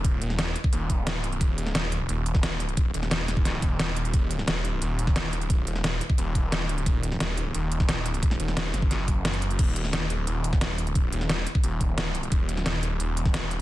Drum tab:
CC |----------------|----------------|----------------|----------------|
HH |x-x-x-x-x-x-x-xx|x-x-x-x-x-x-x-xx|x-x-x-x-x-x-x-xx|x-x-x-x-x-x-x-xx|
SD |---oo-------o---|---oo------oo---|---oo-o-o---o---|---oo------oo---|
BD |o------o--o-----|o----------o----|o------o--o-----|o----------o----|

CC |----------------|----------------|----------------|x---------------|
HH |x-x-x-x-x-x-x-xx|x-x-x-x-x-x-x-xx|x-x-x-x-x-x-xxxx|x-x-x-x-x-x-x-xx|
SD |---oo-------o---|---oo------oo---|-o-oo-o-o---o---|---oo------oo---|
BD |o------o--o-----|o----------o----|o------o--o-----|o----------o----|

CC |----------------|----------------|
HH |x-x-x-x-x-x-x-xx|x-x-x-x-x-x-x-x-|
SD |---oo-------o---|---oo------oo---|
BD |o------o--o-----|o----------o----|